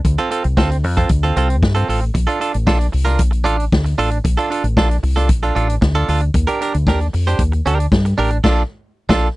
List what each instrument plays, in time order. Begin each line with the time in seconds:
0.05 fingered electric bass D2, muted clean electric guitar stroke, kick, closed hi-hat
0.18 clean electric guitar C4 F4 A4, closed hi-hat
0.31 clean electric guitar C4 F4 A4, closed hi-hat
0.44 fingered electric bass C2, closed hi-hat
0.57 fingered electric bass D2, clean electric guitar C4 F4 A4, kick, snare
0.71 muted clean electric guitar stroke, closed hi-hat
0.84 fingered electric bass F2, muted clean electric guitar stroke, open hi-hat
0.97 clean electric guitar C4 F4 A4, kick, closed hi-hat
1.09 fingered electric bass D2, muted clean electric guitar stroke, kick, closed hi-hat
1.23 clean electric guitar C4 F4 A4, closed hi-hat
1.36 fingered electric bass C2, clean electric guitar C4 F4 A4, closed hi-hat
1.50 muted clean electric guitar stroke, closed hi-hat
1.63 fingered electric bass G2, muted clean electric guitar stroke, kick, snare
1.75 clean electric guitar C4 F4 A4, closed hi-hat
1.88 fingered electric bass A1, clean electric guitar C4 F4 A4, open hi-hat
2.01 muted clean electric guitar stroke, closed hi-hat
2.14 fingered electric bass A#1, muted clean electric guitar stroke, kick, closed hi-hat
2.27 clean electric guitar D4 F4 A4, closed hi-hat
2.40 clean electric guitar D4 F4 A4, closed hi-hat
2.53 fingered electric bass A1, muted clean electric guitar stroke, closed hi-hat
2.67 fingered electric bass A#1, clean electric guitar D4 F4 A4, kick, snare
2.79 muted clean electric guitar stroke, closed hi-hat
2.92 fingered electric bass C2, muted clean electric guitar stroke, open hi-hat
3.05 clean electric guitar D4 F4 A#4, snare, closed hi-hat
3.19 fingered electric bass A#1, kick, closed hi-hat
3.31 muted clean electric guitar stroke, closed hi-hat
3.44 fingered electric bass A1, clean electric guitar D4 F4 A4, closed hi-hat
3.58 muted clean electric guitar stroke, closed hi-hat
3.72 fingered electric bass D2, kick, snare
3.84 muted clean electric guitar stroke, closed hi-hat
3.98 fingered electric bass A1, clean electric guitar D4 F4 A4, open hi-hat
4.11 muted clean electric guitar stroke, closed hi-hat
4.24 fingered electric bass A#1, muted clean electric guitar stroke, kick, closed hi-hat
4.37 clean electric guitar D4 F4 A4, closed hi-hat
4.50 clean electric guitar D4 F4 A4, closed hi-hat
4.64 fingered electric bass A1, muted clean electric guitar stroke, closed hi-hat
4.77 fingered electric bass A#1, clean electric guitar D4 F4 A4, kick, snare
4.90 muted clean electric guitar stroke, closed hi-hat
5.03 fingered electric bass C2, muted clean electric guitar stroke, open hi-hat
5.16 clean electric guitar D4 F4 A4, snare, closed hi-hat
5.29 fingered electric bass A#1, muted clean electric guitar stroke, kick, closed hi-hat
5.43 clean electric guitar D4 F4 A4, closed hi-hat
5.55 fingered electric bass A1, clean electric guitar D4 F4 A4, closed hi-hat
5.69 muted clean electric guitar stroke, closed hi-hat
5.81 fingered electric bass D2, muted clean electric guitar stroke, kick, snare
5.95 clean electric guitar D4 F4 A4, closed hi-hat
6.08 fingered electric bass D2, clean electric guitar D4 F4 A4, open hi-hat
6.20 muted clean electric guitar stroke, closed hi-hat
6.34 fingered electric bass D#2, muted clean electric guitar stroke, kick, closed hi-hat
6.47 clean electric guitar D4 G4 A#4, closed hi-hat
6.61 clean electric guitar D4 G4 A#4, closed hi-hat
6.74 fingered electric bass D2, muted clean electric guitar stroke, closed hi-hat
6.87 fingered electric bass D#2, clean electric guitar D4 G4 A#4, kick, snare
7.01 muted clean electric guitar stroke, closed hi-hat
7.13 fingered electric bass F2, muted clean electric guitar stroke, open hi-hat
7.27 clean electric guitar D4 G4 C5, snare, closed hi-hat
7.39 fingered electric bass D#2, kick, closed hi-hat
7.52 muted clean electric guitar stroke, closed hi-hat
7.66 fingered electric bass D2, clean electric guitar D4 G4 A#4, closed hi-hat
7.79 muted clean electric guitar stroke, closed hi-hat
7.92 fingered electric bass G2, kick, snare
8.05 muted clean electric guitar stroke, closed hi-hat
8.18 fingered electric bass A1, clean electric guitar D4 G4 A#4, open hi-hat
8.30 muted clean electric guitar stroke, closed hi-hat
8.44 fingered electric bass A#1, clean electric guitar D4 F4 A4, kick, snare, crash
9.09 fingered electric bass A#1, clean electric guitar D4 F4 A4, kick, snare